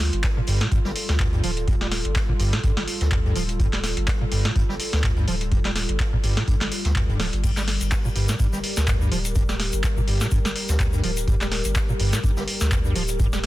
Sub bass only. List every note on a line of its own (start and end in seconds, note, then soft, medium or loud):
0.13 0.22 G1 loud
0.48 0.59 G1 loud
0.85 0.94 G1 medium
1.09 1.41 D2 loud
1.44 2.02 D1 medium
2.05 2.14 G1 loud
2.40 2.51 G1 loud
2.77 2.86 G1 medium
3.01 3.33 D2 loud
3.36 3.94 D1 medium
3.97 4.06 G1 loud
4.32 4.43 G1 loud
4.69 4.78 G1 medium
4.93 5.25 D2 loud
5.28 5.86 D1 medium
5.89 5.98 G1 loud
6.24 6.35 G1 loud
6.61 6.70 G1 medium
6.85 7.08 D2 loud
7.09 7.29 D1 medium
7.33 7.78 G1 medium
7.81 7.90 G1 loud
8.16 8.27 G1 loud
8.53 8.62 G1 medium
8.77 9.09 D2 loud
9.12 9.70 D1 medium
9.73 9.82 G1 loud
10.08 10.19 G1 loud
10.45 10.54 G1 medium
10.69 11.01 D2 loud
11.04 11.62 D1 medium
11.65 11.74 G1 loud
12.00 12.11 G1 medium
12.37 12.46 G1 medium
12.61 12.93 D2 loud
12.96 13.46 D1 medium